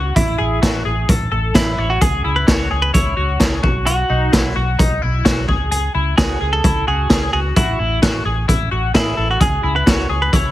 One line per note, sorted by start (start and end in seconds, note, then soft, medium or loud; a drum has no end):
0.00 0.12 C#2 medium
0.00 0.12 F#4 medium
0.00 0.15 F#4 medium
0.15 0.35 A1 medium
0.15 0.38 E4 medium
0.15 0.82 E4 medium
0.15 kick loud
0.15 closed hi-hat medium
0.38 0.59 A1 medium
0.38 0.62 G#4 medium
0.62 0.82 A1 medium
0.62 0.85 F#4 medium
0.62 kick medium
0.62 snare medium
0.62 closed hi-hat medium
0.85 1.05 A1 medium
0.85 1.09 G#4 medium
1.09 1.28 A1 medium
1.09 1.30 A4 medium
1.09 kick loud
1.09 closed hi-hat medium
1.32 1.51 A1 medium
1.32 1.55 A4 medium
1.55 1.74 A1 medium
1.55 1.91 E4 medium
1.55 1.78 B4 medium
1.55 kick medium
1.55 snare loud
1.55 closed hi-hat medium
1.78 1.97 A1 medium
1.78 2.01 C#5 medium
1.90 2.02 F#4 medium
2.01 2.21 C#2 medium
2.01 2.24 G#4 medium
2.01 2.37 G#4 medium
2.01 kick medium
2.01 closed hi-hat medium
2.24 2.44 C#2 medium
2.24 2.48 E4 medium
2.36 2.47 B4 medium
2.47 2.67 C#2 medium
2.47 2.70 F#4 medium
2.47 2.82 C#5 medium
2.47 kick medium
2.47 snare loud
2.47 closed hi-hat medium
2.71 2.90 C#2 medium
2.71 2.93 G#4 medium
2.82 2.93 B4 medium
2.94 3.13 C#2 medium
2.94 3.16 E4 medium
2.94 3.83 C#5 medium
2.94 kick loud
2.94 closed hi-hat medium
3.17 3.36 C#2 medium
3.17 3.40 F#4 medium
3.40 3.63 G#4 medium
3.40 kick medium
3.40 snare medium
3.40 closed hi-hat medium
3.63 4.01 B1 medium
3.63 3.85 F#4 medium
3.63 kick loud
3.86 4.52 F#4 medium
3.86 4.10 F#4 medium
3.86 closed hi-hat medium
4.10 4.29 B1 medium
4.10 4.32 D#4 medium
4.32 4.52 B1 medium
4.32 4.56 E4 medium
4.32 kick medium
4.32 snare medium
4.32 closed hi-hat medium
4.56 4.75 B1 medium
4.56 4.79 F#4 medium
4.79 4.98 B1 medium
4.79 5.02 D#4 medium
4.79 kick loud
4.79 closed hi-hat medium
5.02 5.21 B1 medium
5.02 5.25 E4 medium
5.25 5.48 F#4 medium
5.25 kick medium
5.25 snare loud
5.25 closed hi-hat medium
5.48 5.87 C#2 medium
5.48 5.70 G#4 medium
5.48 kick medium
5.71 5.94 G#4 medium
5.71 closed hi-hat medium
5.95 6.14 C#2 medium
5.95 6.17 E4 medium
6.18 6.37 C#2 medium
6.18 6.40 F#4 medium
6.18 6.52 G#4 medium
6.18 kick loud
6.18 snare loud
6.18 closed hi-hat medium
6.41 6.60 C#2 medium
6.41 6.64 G#4 medium
6.53 6.87 A4 loud
6.64 6.83 C#2 medium
6.64 6.87 E4 medium
6.64 kick loud
6.64 closed hi-hat medium
6.87 7.06 C#2 medium
6.87 7.10 F#4 medium
6.87 7.30 G#4 medium
7.10 7.29 C#2 medium
7.10 7.33 G#4 medium
7.10 kick medium
7.10 snare loud
7.10 closed hi-hat medium
7.33 7.52 C#2 medium
7.33 7.55 F#4 medium
7.33 7.39 G#4 medium
7.56 7.75 A1 medium
7.56 7.99 E4 medium
7.56 7.79 F#4 medium
7.56 kick loud
7.56 closed hi-hat medium
7.79 7.98 A1 medium
7.79 8.02 E4 medium
8.02 8.21 A1 medium
8.02 8.25 F#4 medium
8.02 kick loud
8.02 snare medium
8.02 closed hi-hat medium
8.25 8.44 A1 medium
8.25 8.48 G#4 medium
8.48 8.67 A1 medium
8.48 8.71 E4 medium
8.48 kick loud
8.48 closed hi-hat medium
8.71 8.91 A1 medium
8.71 8.94 F#4 medium
8.94 9.14 A1 medium
8.94 9.30 E4 medium
8.94 9.17 G#4 medium
8.94 kick loud
8.94 snare loud
8.94 closed hi-hat medium
9.17 9.37 A1 medium
9.17 9.40 A4 medium
9.31 9.41 F#4 medium
9.40 9.59 C#2 medium
9.40 9.63 G#4 medium
9.40 9.73 G#4 medium
9.40 kick loud
9.40 closed hi-hat medium
9.63 9.83 C#2 medium
9.63 9.86 E4 medium
9.76 9.87 B4 medium
9.86 10.06 C#2 medium
9.86 10.09 F#4 medium
9.86 10.22 C#5 loud
9.86 kick medium
9.86 snare loud
9.86 closed hi-hat medium
10.10 10.29 C#2 medium
10.10 10.32 G#4 medium
10.22 10.33 B4 medium
10.33 10.51 C#2 medium
10.33 10.51 E4 medium
10.33 10.51 C#5 medium
10.33 kick loud
10.33 closed hi-hat medium